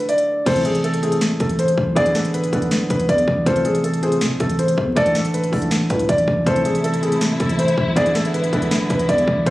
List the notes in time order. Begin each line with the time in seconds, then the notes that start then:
Already playing: D3 A3 E4 A4
0.09 D5, closed hi-hat
0.18 closed hi-hat
0.46 A1 C3 A3 E4 A4 C5, kick, closed hi-hat, crash
0.56 closed hi-hat
0.65 A1 G#4, closed hi-hat
0.75 closed hi-hat
0.84 A4, closed hi-hat
0.94 closed hi-hat
1.02 C3 A3 E4 G#4 A4, closed hi-hat
1.12 closed hi-hat
1.21 snare, closed hi-hat
1.40 A1 A4, kick, closed hi-hat
1.49 closed hi-hat
1.59 C5, closed hi-hat
1.68 closed hi-hat
1.78 A1, kick
1.96 A1 D3 B3 E4 G#4 D5, kick, closed hi-hat
2.06 closed hi-hat
2.15 A4, snare, closed hi-hat
2.25 closed hi-hat
2.34 B4, closed hi-hat
2.44 closed hi-hat
2.52 A1 D3 B3 E4 A4 B4, kick, closed hi-hat
2.62 closed hi-hat
2.71 B1, snare, closed hi-hat
2.81 A1
2.90 A1 B4, kick, closed hi-hat
2.99 closed hi-hat
3.09 E2 D5, kick, closed hi-hat
3.18 closed hi-hat
3.28 A1, kick
3.46 A1 C3 A3 F4 A4 C5, kick, closed hi-hat
3.56 closed hi-hat
3.65 A1 G#4, closed hi-hat
3.75 closed hi-hat
3.84 A4, closed hi-hat
3.94 closed hi-hat
4.02 C3 A3 F4 G#4 C5, closed hi-hat
4.12 closed hi-hat
4.21 C3, snare, closed hi-hat
4.31 A1
4.40 A1 A4, kick, closed hi-hat
4.49 closed hi-hat
4.59 C5, closed hi-hat
4.68 closed hi-hat
4.78 E2, kick
4.96 A1 D3 A3 E4 A4 D5, kick, closed hi-hat
5.06 closed hi-hat
5.15 A4, snare, closed hi-hat
5.25 closed hi-hat
5.34 B4, closed hi-hat
5.44 closed hi-hat
5.52 A1 D3 A3 E4 A4, kick, open hi-hat
5.62 closed hi-hat
5.71 snare, closed hi-hat
5.90 A2 B4, kick, closed hi-hat
5.99 closed hi-hat
6.09 A1 D5, kick, closed hi-hat
6.18 closed hi-hat
6.28 A1, kick
6.46 A1 C3 A3 E4 A4 C5, kick, closed hi-hat
6.56 closed hi-hat
6.65 A1 G#4, closed hi-hat
6.75 closed hi-hat
6.84 A4, closed hi-hat
6.94 closed hi-hat
7.02 C3 A3 E4 G#4 A4, closed hi-hat
7.12 closed hi-hat
7.21 snare, closed hi-hat
7.40 A1 A4, kick, closed hi-hat
7.49 closed hi-hat
7.59 C5, closed hi-hat
7.68 closed hi-hat
7.78 A1, kick
7.96 A1 D3 G#3 B3 E4 G#4 D5, kick, closed hi-hat
8.06 closed hi-hat
8.15 A4, snare, closed hi-hat
8.25 closed hi-hat
8.34 B4, closed hi-hat
8.44 closed hi-hat
8.52 A1 D3 B3 E4 A4 B4, kick, closed hi-hat
8.62 closed hi-hat
8.71 B1, snare, closed hi-hat
8.81 A1
8.90 A1 B4, kick, closed hi-hat
8.99 closed hi-hat
9.09 E2 D5, kick, closed hi-hat
9.18 closed hi-hat
9.28 A1, kick
9.46 A1 C3 A3 F4 C5, kick, closed hi-hat